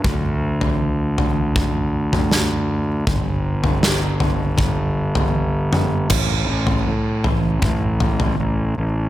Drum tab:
CC |----------------|----------------|x---------------|
SD |------------o---|----o-----------|----------------|
T2 |-----------o----|--------------o-|----------------|
FT |o--o--o-o--o----|o--o--o-o--o----|o--o--o-o-oo----|
BD |o-------o-------|o-------o-------|o-------o-------|